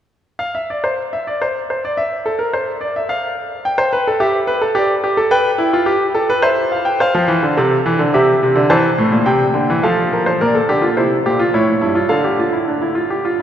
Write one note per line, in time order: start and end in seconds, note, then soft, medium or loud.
0.39 0.54 F5 medium
0.55 0.69 E5 medium
0.70 0.84 D5 medium
0.84 1.01 C5 medium
1.13 1.26 E5 medium
1.27 1.40 D5 medium
1.42 1.58 C5 medium
1.70 1.83 C5 medium
1.85 1.97 D5 medium
1.97 2.14 E5 medium
2.26 2.39 A4 medium
2.39 2.52 A#4 medium
2.53 2.71 C5 medium
2.81 2.94 D5 medium
2.96 3.09 E5 medium
3.09 3.63 F5 medium
3.65 4.19 G5 medium
3.78 3.92 C5 medium
3.93 4.06 B4 medium
4.07 4.21 A4 medium
4.20 4.38 G4 medium
4.20 4.75 E5 medium
4.47 4.62 B4 medium
4.61 4.76 A4 medium
4.75 4.93 G4 medium
4.75 5.30 D5 medium
5.04 5.18 G4 medium
5.17 5.32 A4 medium
5.31 5.49 B4 loud
5.31 6.41 G5 medium
5.58 5.73 E4 medium
5.73 5.88 F4 medium
5.86 6.04 G4 medium
6.15 6.29 A4 medium
6.30 6.44 B4 medium
6.42 6.99 C5 medium
6.42 6.61 E5 medium
6.72 6.86 F5 medium
6.85 7.00 G5 medium
7.00 7.56 C5 medium
7.00 8.11 F5 medium
7.15 7.29 F3 medium
7.28 7.43 E3 medium
7.43 7.57 D3 medium
7.57 7.75 C3 medium
7.57 8.13 A4 medium
7.86 8.00 E3 medium
7.99 8.14 D3 medium
8.14 8.32 C3 medium
8.14 8.69 G4 medium
8.14 8.69 E5 medium
8.43 8.57 C3 medium
8.56 8.70 D3 medium
8.70 8.88 E3 loud
8.70 9.80 C5 medium
8.70 9.26 A5 medium
8.98 9.13 A2 medium
9.12 9.27 A#2 medium
9.26 9.44 C3 medium
9.26 9.82 G5 medium
9.54 9.69 D3 medium
9.70 9.84 E3 medium
9.83 10.39 F3 medium
9.83 10.02 A4 medium
9.83 10.39 F5 medium
10.13 10.26 A#4 medium
10.26 10.40 C5 medium
10.41 10.59 A#2 medium
10.41 10.55 A#4 medium
10.41 10.96 D5 medium
10.55 10.69 A4 medium
10.69 10.87 D3 medium
10.69 10.83 G4 medium
10.82 10.96 F4 medium
10.97 11.14 C3 medium
10.97 11.15 E4 medium
10.97 11.52 C5 medium
11.26 11.43 A#2 medium
11.26 11.40 G4 medium
11.39 11.54 F4 medium
11.54 11.72 A2 medium
11.54 11.72 E4 medium
11.54 12.10 C#5 medium
11.81 12.00 G2 medium
11.81 11.96 E4 medium
11.95 12.10 F4 medium
12.09 13.42 D3 medium
12.09 12.24 A4 medium
12.09 13.42 F5 medium
12.24 12.39 G4 medium
12.39 12.54 F4 medium
12.52 12.67 E4 medium
12.68 12.82 D4 medium
12.81 12.96 E4 medium
12.95 13.10 F4 medium
13.10 13.25 G4 medium
13.25 13.39 F4 medium